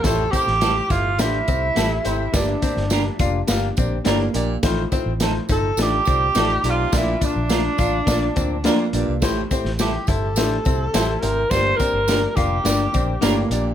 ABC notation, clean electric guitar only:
X:1
M:4/4
L:1/8
Q:1/4=105
K:Aphr
V:1 name="Clean electric guitar"
z2 [G,CEA] z3 [G,CEA] z | z2 [B,DGB] z3 [B,DGB] z | z2 [F,C_EA] z3 [F,CEA] z | z2 [B,DFB] z3 [B,DFB] z |
z2 [G,CEA] z3 [G,CEA] z | z2 [B,DGB] z3 [B,DGB] z |]